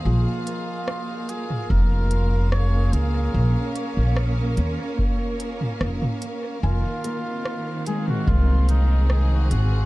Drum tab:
HH |--x---x---x---x-|--x---x---x---x-|--x---x---x---x-|
SD |----r-------r---|----r-------r---|----r-------r---|
T2 |-------o--------|-----------o-o--|-------o--------|
BD |--------o-------|--------o-------|--------o-------|